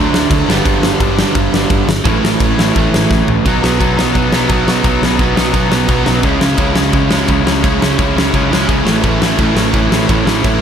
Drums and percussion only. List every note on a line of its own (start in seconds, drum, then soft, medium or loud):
0.14 snare loud
0.31 kick loud
0.31 crash medium
0.50 snare loud
0.66 kick loud
0.66 crash medium
0.83 snare loud
1.00 kick loud
1.00 crash medium
1.19 snare loud
1.35 kick loud
1.35 crash medium
1.54 snare loud
1.70 kick loud
1.70 crash medium
1.89 snare loud
2.05 kick loud
2.05 crash medium
2.25 snare loud
2.40 kick loud
2.40 crash medium
2.59 snare loud
2.76 kick loud
2.76 crash medium
2.94 snare loud
3.11 kick loud
3.11 snare medium
3.28 floor tom medium
3.46 kick loud
3.46 crash medium
3.64 snare loud
3.81 kick loud
3.81 crash medium
3.99 snare loud
4.15 kick medium
4.15 crash medium
4.33 snare loud
4.49 kick loud
4.49 crash medium
4.68 snare loud
4.84 kick loud
4.84 crash medium
5.03 snare loud
5.19 kick loud
5.19 crash soft
5.37 snare loud
5.54 kick loud
5.54 crash medium
5.72 snare loud
5.88 kick loud
5.88 crash medium
6.06 snare loud
6.23 kick loud
6.23 crash medium
6.41 snare loud
6.58 kick loud
6.58 crash medium
6.76 snare loud
6.93 kick loud
6.93 crash soft
7.11 snare loud
7.28 kick loud
7.28 crash medium
7.47 snare loud
7.64 kick loud
7.64 crash medium
7.82 snare loud
7.99 kick loud
7.99 crash medium
8.18 snare loud
8.34 kick loud
8.34 crash medium
8.53 snare loud
8.69 kick loud
8.69 crash medium
8.87 snare loud
9.03 kick loud
9.03 crash medium
9.22 snare loud
9.38 kick loud
9.38 crash medium
9.57 snare loud
9.73 kick loud
9.73 crash medium
9.92 snare loud
10.09 kick loud
10.09 crash medium
10.27 snare loud
10.44 kick loud
10.44 crash medium